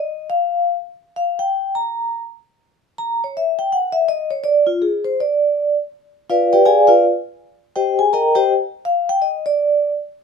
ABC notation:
X:1
M:4/4
L:1/8
Q:"Swing" 1/4=164
K:Cm
V:1 name="Vibraphone"
e f3 z2 f g- | g b3 z4 | b _d =e g _g e _e d | d F A c d3 z |
z2 [F=Bdf] [GBdg] [Adfa] [FBdf] z2 | z2 [Gceg] [Aa] [Begb] [Gceg] z2 | f g e d3 z2 |]